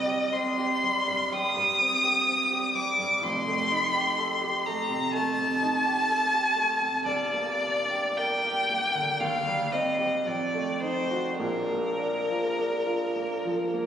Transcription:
0.00 1.28 C2 medium
0.00 0.83 G3 soft
0.00 0.22 C4 soft
0.00 0.35 D#5 loud
0.05 0.49 G4 soft
0.32 0.74 C4 soft
0.32 1.34 C6 loud
0.58 0.98 G4 medium
0.83 1.23 G3 soft
1.07 1.47 G2 soft
1.32 1.71 G3 medium
1.32 2.77 D#6 loud
1.56 1.95 G2 soft
1.81 2.19 C4 soft
2.04 2.42 G4 medium
2.28 2.66 C4 medium
2.51 2.89 G4 medium
2.75 3.13 G3 soft
2.75 3.25 D6 loud
2.99 3.23 G2 soft
3.22 5.10 F1 medium
3.22 5.10 F2 medium
3.22 4.67 C6 loud
3.47 3.84 A3 soft
3.71 4.08 D#4 medium
3.94 4.32 G4 soft
4.18 4.56 A4 medium
4.42 4.80 G4 medium
4.66 5.05 A3 soft
4.66 5.13 A#5 loud
4.90 5.28 C3 medium
5.14 5.52 A3 medium
5.14 7.03 A5 loud
5.39 5.76 C3 soft
5.62 6.00 D#4 medium
5.86 6.23 G4 medium
6.09 6.47 A4 soft
6.33 6.71 G4 soft
6.55 6.96 A3 soft
6.81 7.07 C3 soft
7.05 9.17 G1 medium
7.05 9.17 G2 medium
7.05 8.19 D5 loud
7.33 7.79 A#3 soft
7.62 8.07 D4 soft
7.90 8.34 G4 soft
8.18 8.60 A#4 medium
8.18 9.22 G5 loud
8.44 8.86 G4 medium
8.70 9.11 A#3 soft
8.95 9.21 D3 soft
9.20 10.23 D#2 medium
9.20 9.74 F5 medium
9.47 9.89 G3 soft
9.72 10.16 C4 soft
9.72 10.28 D#5 medium
9.99 10.26 G4 soft
10.26 11.36 F2 medium
10.26 10.82 D5 medium
10.54 10.99 A3 soft
10.81 11.28 D#4 soft
10.81 11.37 C5 medium
11.11 11.40 F#4 soft
11.38 13.71 A#1 medium
11.38 13.71 A#2 medium
11.38 13.86 A#4 medium
11.70 12.17 A#3 soft
11.99 12.46 D4 soft
12.29 12.76 F4 soft
12.58 13.05 D4 soft
12.87 13.34 F4 soft
13.16 13.63 A#3 soft
13.45 13.86 F3 soft
13.74 13.86 A#3 soft

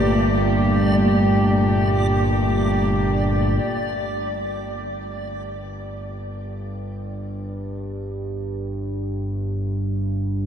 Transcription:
0.00 3.63 G1 medium
0.00 3.64 G2 medium
0.00 3.67 A#2 medium
0.00 3.66 A3 medium
0.00 3.67 G4 medium
0.00 3.69 D5 medium
3.64 10.46 G1 medium
3.64 10.46 G2 medium

